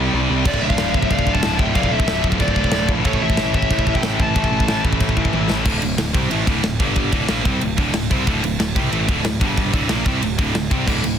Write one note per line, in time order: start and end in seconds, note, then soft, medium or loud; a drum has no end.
0.00 0.43 C3 loud
0.00 0.44 G3 loud
0.00 0.45 C4 loud
0.06 0.13 C3 medium
0.06 0.13 G3 medium
0.13 0.27 C2 medium
0.13 0.20 C3 medium
0.13 0.22 G3 medium
0.21 0.29 C3 medium
0.21 0.29 G3 medium
0.29 0.43 C2 medium
0.29 0.36 C3 medium
0.29 0.36 G3 medium
0.36 0.44 C3 medium
0.36 0.44 G3 medium
0.45 0.59 D1 loud
0.45 0.52 D2 medium
0.45 0.53 A2 medium
0.45 1.26 D3 medium
0.45 1.27 A3 loud
0.45 1.25 F4 loud
0.45 0.60 A4 medium
0.45 0.62 D5 loud
0.45 kick loud
0.45 china medium
0.45 crash loud
0.52 0.60 D2 medium
0.52 0.61 A2 medium
0.52 kick medium
0.60 0.76 D1 medium
0.60 0.67 D2 medium
0.60 0.66 A2 medium
0.60 1.07 D5 medium
0.60 0.99 F5 loud
0.67 0.75 D2 medium
0.67 0.74 A2 medium
0.67 kick medium
0.76 0.92 D1 medium
0.76 0.82 D2 medium
0.76 0.83 A2 medium
0.76 snare loud
0.76 china medium
0.82 0.90 D2 medium
0.82 0.90 A2 medium
0.90 1.08 D1 loud
0.90 0.97 D2 medium
0.90 0.98 A2 medium
0.90 kick medium
0.97 1.05 D2 medium
0.97 1.04 A2 medium
0.97 1.10 E5 loud
1.02 1.12 D2 medium
1.02 1.12 A2 medium
1.02 kick medium
1.11 1.24 D1 loud
1.11 1.20 D2 medium
1.11 1.20 A2 medium
1.11 1.33 D5 medium
1.11 1.36 F5 loud
1.11 kick loud
1.11 china medium
1.19 1.28 D2 medium
1.19 1.28 A2 medium
1.19 kick medium
1.27 1.41 D1 loud
1.27 1.34 D2 medium
1.27 1.35 A2 medium
1.27 1.42 D3 medium
1.27 1.44 A3 medium
1.27 1.42 F4 medium
1.27 kick medium
1.33 1.42 D2 medium
1.33 1.43 A2 medium
1.33 1.57 F5 loud
1.33 1.58 A5 loud
1.33 kick medium
1.42 1.57 D1 loud
1.42 1.50 D2 medium
1.42 1.51 A2 medium
1.42 1.74 D3 medium
1.42 1.76 A3 loud
1.42 1.75 F4 medium
1.42 snare loud
1.42 china medium
1.50 1.58 D2 medium
1.50 1.59 A2 medium
1.58 1.73 D1 loud
1.58 1.65 D2 medium
1.58 1.66 A2 medium
1.58 1.75 E5 medium
1.58 1.76 G5 loud
1.58 kick medium
1.66 1.73 D2 medium
1.66 1.74 A2 medium
1.74 1.89 D1 loud
1.74 1.82 D2 medium
1.74 1.81 A2 medium
1.74 2.55 D3 loud
1.74 2.55 A3 loud
1.74 2.54 F4 loud
1.74 1.91 D5 medium
1.74 1.92 F5 loud
1.74 kick loud
1.74 china medium
1.82 1.89 D2 medium
1.82 1.89 A2 medium
1.82 kick medium
1.90 2.05 D1 medium
1.90 1.97 D2 medium
1.90 1.97 A2 medium
1.90 2.24 A4 medium
1.90 2.24 E5 loud
1.97 2.05 D2 medium
1.97 2.05 A2 medium
1.97 kick loud
2.05 2.21 D1 loud
2.05 2.12 D2 medium
2.05 2.13 A2 medium
2.05 snare loud
2.05 china medium
2.12 2.19 D2 medium
2.12 2.20 A2 medium
2.20 2.27 D2 medium
2.20 2.28 A2 medium
2.24 2.38 D1 loud
2.24 kick loud
2.28 2.36 D2 medium
2.28 2.35 A2 medium
2.28 kick medium
2.36 2.43 D2 medium
2.36 2.43 A2 medium
2.40 2.68 D1 medium
2.40 2.50 D2 medium
2.40 2.51 A2 medium
2.40 2.86 A4 medium
2.40 2.86 D5 loud
2.40 kick loud
2.40 china medium
2.48 2.58 D2 medium
2.48 2.57 A2 medium
2.48 kick medium
2.55 2.67 D2 medium
2.55 2.64 A2 medium
2.55 2.71 D3 medium
2.55 2.73 A3 medium
2.55 2.71 F4 medium
2.55 kick medium
2.64 2.74 D2 medium
2.64 2.72 A2 medium
2.64 kick medium
2.72 2.86 D1 loud
2.72 2.82 D2 medium
2.72 2.80 A2 medium
2.72 3.04 D3 medium
2.72 3.05 A3 medium
2.72 3.05 F4 medium
2.72 snare loud
2.72 china medium
2.81 2.89 D2 medium
2.81 2.88 A2 medium
2.88 3.03 A#1 medium
2.88 2.96 D2 medium
2.88 2.95 A2 medium
2.88 kick medium
2.96 3.04 D2 medium
2.96 3.03 A2 medium
3.05 3.19 A1 loud
3.05 3.12 A2 medium
3.05 3.13 E3 medium
3.05 3.88 A3 loud
3.05 3.86 C#4 loud
3.05 3.86 E4 loud
3.05 3.21 A4 medium
3.05 3.86 A4 loud
3.05 3.22 C#5 loud
3.05 kick loud
3.05 china medium
3.13 3.19 A2 medium
3.13 3.20 E3 medium
3.13 kick medium
3.20 3.36 A1 medium
3.20 3.27 A2 medium
3.20 3.28 E3 medium
3.20 3.53 C#5 medium
3.20 3.55 E5 loud
3.27 3.34 A2 medium
3.27 3.36 E3 medium
3.27 kick medium
3.35 3.52 A1 loud
3.35 3.42 A2 medium
3.35 3.43 E3 medium
3.35 snare loud
3.35 china medium
3.43 3.51 A2 medium
3.43 3.51 E3 medium
3.51 3.68 A1 loud
3.51 3.57 A2 medium
3.51 3.58 E3 medium
3.51 3.93 C#5 medium
3.51 kick medium
3.56 3.65 A2 medium
3.56 3.66 E3 medium
3.56 3.97 E5 medium
3.62 3.73 A2 medium
3.62 3.74 E3 medium
3.62 kick medium
3.70 3.84 A1 loud
3.70 3.79 A2 medium
3.70 kick loud
3.70 china medium
3.74 3.82 E3 medium
3.79 3.86 A2 medium
3.79 3.89 E3 medium
3.79 kick medium
3.86 4.01 A1 loud
3.86 3.94 A2 medium
3.86 3.96 E3 medium
3.86 4.04 A3 medium
3.86 4.03 C#4 medium
3.86 4.02 E4 medium
3.86 4.05 A4 medium
3.86 kick medium
3.95 4.04 E3 medium
3.95 4.18 E5 medium
3.95 4.21 G5 loud
3.95 kick medium
4.03 4.17 A1 loud
4.03 4.10 A2 medium
4.03 4.12 E3 medium
4.03 4.35 A3 medium
4.03 4.34 C#4 loud
4.03 4.34 E4 medium
4.03 4.36 A4 medium
4.03 snare loud
4.03 china medium
4.10 4.18 A2 medium
4.10 4.20 E3 medium
4.18 4.33 A1 loud
4.18 4.25 A2 medium
4.18 4.26 E3 medium
4.18 4.81 E5 medium
4.18 4.82 A5 loud
4.18 kick medium
4.26 4.33 A2 medium
4.26 4.34 E3 medium
4.35 4.50 A1 loud
4.35 4.41 A2 medium
4.35 4.43 E3 medium
4.35 5.16 A3 loud
4.35 5.16 C#4 loud
4.35 5.15 E4 loud
4.35 5.15 A4 loud
4.35 kick loud
4.35 china medium
4.41 4.49 A2 medium
4.41 4.51 E3 medium
4.41 kick medium
4.51 4.66 A1 medium
4.51 4.57 A2 medium
4.51 4.58 E3 medium
4.57 4.65 A2 medium
4.57 4.66 E3 medium
4.57 kick medium
4.65 4.82 A1 loud
4.65 4.73 A2 medium
4.65 4.72 E3 medium
4.65 snare loud
4.65 china medium
4.73 4.80 A2 medium
4.73 4.80 E3 medium
4.81 4.88 A2 medium
4.81 4.90 E3 medium
4.81 kick medium
4.85 4.99 A1 loud
4.85 4.95 A2 medium
4.90 4.96 E3 medium
4.90 kick medium
4.96 5.03 A2 medium
4.96 5.04 E3 medium
5.00 5.28 A1 medium
5.00 5.10 A2 medium
5.00 kick loud
5.00 china medium
5.05 5.12 E3 medium
5.09 5.17 A2 medium
5.09 5.20 E3 medium
5.09 kick medium
5.17 5.25 A2 medium
5.17 5.28 E3 medium
5.17 5.32 A3 medium
5.17 5.32 C#4 medium
5.17 5.32 E4 medium
5.17 5.32 A4 medium
5.17 kick medium
5.25 5.33 A2 medium
5.25 5.35 E3 medium
5.25 kick medium
5.33 5.47 A1 loud
5.33 5.41 A2 medium
5.33 5.43 E3 medium
5.33 5.65 A3 medium
5.33 5.65 C#4 medium
5.33 5.65 E4 medium
5.33 5.65 A4 medium
5.33 high tom medium
5.42 5.49 A2 medium
5.42 5.51 E3 medium
5.49 5.64 A1 medium
5.49 5.55 A2 medium
5.49 5.58 E3 medium
5.49 snare loud
5.56 5.63 A2 medium
5.56 5.65 E3 medium
5.65 5.81 D1 loud
5.65 5.81 D2 loud
5.65 5.81 A2 loud
5.65 5.82 D3 loud
5.65 kick loud
5.65 crash loud
5.82 5.97 D1 medium
5.82 5.95 D2 medium
5.82 5.95 A2 medium
5.82 ride medium
5.98 6.13 D1 medium
5.98 6.11 D2 medium
5.98 6.12 A2 medium
5.98 snare loud
5.98 ride loud
6.14 6.30 C2 loud
6.14 6.30 C3 loud
6.14 6.31 G3 loud
6.14 6.31 C4 loud
6.14 kick loud
6.14 ride medium
6.31 6.46 A1 medium
6.31 6.46 A2 loud
6.31 6.47 E3 loud
6.31 6.47 A3 loud
6.31 ride loud
6.47 6.62 D1 loud
6.47 6.62 D2 medium
6.47 6.62 A2 loud
6.47 6.64 D3 loud
6.47 kick loud
6.47 ride medium
6.63 6.79 D1 medium
6.63 6.76 D2 medium
6.63 6.76 A2 medium
6.63 snare loud
6.63 ride loud
6.80 7.10 G1 loud
6.80 7.12 G2 loud
6.80 7.12 D3 medium
6.80 7.13 G3 loud
6.80 kick loud
6.80 ride medium
6.96 kick loud
6.96 ride loud
7.12 7.28 D1 loud
7.12 7.28 D2 medium
7.12 7.29 A2 loud
7.12 7.29 D3 loud
7.12 kick loud
7.12 ride medium
7.29 7.44 A#1 loud
7.29 7.45 A#2 medium
7.29 7.45 F3 loud
7.29 7.46 A#3 loud
7.29 snare loud
7.29 ride loud
7.45 7.60 C2 loud
7.45 7.61 C3 loud
7.45 7.61 G3 loud
7.45 7.62 C4 loud
7.45 kick loud
7.45 ride medium
7.61 7.77 D1 medium
7.61 7.75 D2 medium
7.61 7.75 A2 medium
7.61 ride loud
7.78 7.93 D1 medium
7.78 7.94 D2 medium
7.78 7.94 A2 medium
7.78 7.95 D3 loud
7.78 kick loud
7.78 ride medium
7.94 8.09 D1 medium
7.94 8.08 D2 medium
7.94 8.08 A2 medium
7.94 snare loud
7.94 ride loud
8.11 8.26 C2 loud
8.11 8.27 C3 medium
8.11 8.27 G3 medium
8.11 8.27 C4 loud
8.11 kick loud
8.11 ride medium
8.27 8.42 D1 loud
8.27 8.43 D2 loud
8.27 8.43 A2 loud
8.27 8.43 D3 loud
8.27 kick loud
8.27 ride loud
8.43 8.58 D1 medium
8.43 8.56 D2 medium
8.43 8.57 A2 medium
8.43 ride medium
8.59 8.74 D1 medium
8.59 8.73 D2 medium
8.59 8.73 A2 medium
8.59 snare loud
8.59 ride loud
8.76 8.91 C2 loud
8.76 8.92 C3 loud
8.76 8.92 G3 loud
8.76 8.92 C4 loud
8.76 kick loud
8.76 ride medium
8.92 9.07 A1 loud
8.92 9.08 A2 loud
8.92 9.08 E3 loud
8.92 9.08 A3 loud
8.92 ride loud
9.08 9.23 D1 loud
9.08 9.24 D2 loud
9.08 9.24 A2 loud
9.08 9.25 D3 loud
9.08 kick loud
9.08 ride medium
9.23 9.39 D1 medium
9.23 9.41 D2 medium
9.23 9.38 A2 medium
9.23 snare loud
9.23 ride loud
9.41 9.71 G1 loud
9.41 9.73 G2 medium
9.41 9.74 D3 loud
9.41 9.74 G3 loud
9.41 kick loud
9.41 ride medium
9.57 kick loud
9.57 ride loud
9.73 9.88 D1 medium
9.73 9.89 D2 medium
9.73 9.89 A2 loud
9.73 9.90 D3 loud
9.73 kick loud
9.73 ride medium
9.89 10.04 A#1 loud
9.89 10.05 A#2 medium
9.89 10.05 F3 medium
9.89 10.06 A#3 medium
9.89 snare loud
9.89 ride loud
10.06 10.21 C2 loud
10.06 10.22 C3 medium
10.06 10.22 G3 loud
10.06 10.22 C4 loud
10.06 kick loud
10.06 ride medium
10.22 10.37 D1 medium
10.22 10.35 D2 medium
10.22 10.35 A2 medium
10.22 ride loud
10.38 10.54 D1 loud
10.38 10.53 D2 loud
10.38 10.53 A2 medium
10.38 10.55 D3 loud
10.38 kick loud
10.38 ride medium
10.54 10.70 D1 medium
10.54 10.67 D2 medium
10.54 10.68 A2 medium
10.54 snare loud
10.54 ride loud
10.70 10.86 C2 loud
10.70 10.86 C3 loud
10.70 10.87 G3 loud
10.70 10.87 C4 loud
10.70 kick loud
10.70 ride medium
10.87 11.02 D1 loud
10.87 11.02 D2 loud
10.87 11.02 A2 loud
10.87 11.03 D3 loud
10.87 kick loud
10.87 crash loud
11.03 11.18 D1 medium
11.03 11.16 D2 medium
11.03 11.16 A2 medium
11.03 ride medium